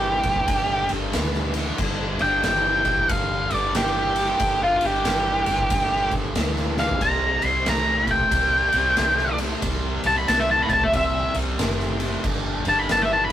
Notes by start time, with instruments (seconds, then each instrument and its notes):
Already playing: fingered electric bass G1, distorted electric guitar G2 E3, lead electric guitar G4
0.23 fingered electric bass G1, distorted electric guitar G2 E3, kick, ride
0.36 kick
0.48 fingered electric bass G1, distorted electric guitar G2 D3, kick, ride
0.89 fingered electric bass G1, distorted electric guitar G2 D3, ride
1.13 fingered electric bass D2, distorted electric guitar G2 E3, snare, ride
1.34 snare
1.54 distorted electric guitar G2 E3, ride
1.78 fingered electric bass G1, distorted electric guitar G2 D3, kick, crash
2.19 fingered electric bass G1, distorted electric guitar G2 D3, lead electric guitar G5, ride
2.43 fingered electric bass G1, distorted electric guitar G2 E3, lead electric guitar G5, snare, ride
2.85 distorted electric guitar G2 E3, kick, ride
2.97 kick
3.09 fingered electric bass G1, distorted electric guitar G2 D3, lead electric guitar F5, kick, ride
3.51 fingered electric bass G1, distorted electric guitar G2 D3, lead electric guitar D5, ride
3.75 fingered electric bass G1, distorted electric guitar G2 E3, lead electric guitar G4, snare, ride
4.16 distorted electric guitar G2 E3, ride
4.40 fingered electric bass G1, distorted electric guitar G2 D3, kick, ride
4.63 lead electric guitar F4
4.81 fingered electric bass G1, distorted electric guitar G2 D3, ride
4.86 lead electric guitar G4
5.05 fingered electric bass G1, distorted electric guitar G2 E3, snare, ride
5.46 fingered electric bass G1, distorted electric guitar G2 E3, ride
5.58 kick
5.70 fingered electric bass G1, distorted electric guitar G2 D3, kick, ride
6.11 fingered electric bass G1, distorted electric guitar G2 D3, kick, ride
6.35 fingered electric bass D2, distorted electric guitar G2 E3, snare, ride
6.57 snare
6.76 distorted electric guitar G2 E3, lead electric guitar F5, snare
6.89 floor tom
7.00 fingered electric bass C2, distorted electric guitar C3 G3, lead electric guitar A#5, kick, crash
7.41 fingered electric bass C2, distorted electric guitar C3 G3, ride
7.45 lead electric guitar C6
7.65 fingered electric bass C2, distorted electric guitar C3 A3, lead electric guitar A#5, snare, ride
8.07 distorted electric guitar C3 A3, lead electric guitar G5, kick, ride
8.19 kick
8.31 fingered electric bass C2, distorted electric guitar C3 G3, kick, ride
8.72 fingered electric bass C2, distorted electric guitar C3 G3, ride
8.97 fingered electric bass C2, distorted electric guitar C3 A3, snare, ride
9.18 snare
9.38 distorted electric guitar C3 A3, ride
9.62 fingered electric bass C2, distorted electric guitar C3 G3, kick, ride
10.04 fingered electric bass C2, distorted electric guitar C3 G3, lead electric guitar A5, ride
10.18 lead electric guitar B5
10.28 fingered electric bass C2, distorted electric guitar C3 A3, lead electric guitar A5, snare, ride
10.40 lead electric guitar E5
10.51 lead electric guitar A5
10.62 lead electric guitar B5
10.69 fingered electric bass C2, distorted electric guitar C3 A3, kick, ride
10.73 lead electric guitar A5
10.81 lead electric guitar E5, kick
10.93 fingered electric bass C2, distorted electric guitar C3 G3, lead electric guitar E5, kick, ride
11.34 fingered electric bass C2, distorted electric guitar C3 G3, ride
11.59 fingered electric bass F#1, distorted electric guitar C3 A3, snare, ride
11.80 snare
12.00 distorted electric guitar C3 A3, ride
12.24 fingered electric bass G1, distorted electric guitar G2 D3, kick, crash
12.65 fingered electric bass G1, distorted electric guitar G2 D3, lead electric guitar A5, ride
12.79 lead electric guitar B5
12.89 fingered electric bass G1, distorted electric guitar G2 E3, lead electric guitar A5, snare, ride
13.02 lead electric guitar E5
13.13 lead electric guitar A5
13.24 lead electric guitar B5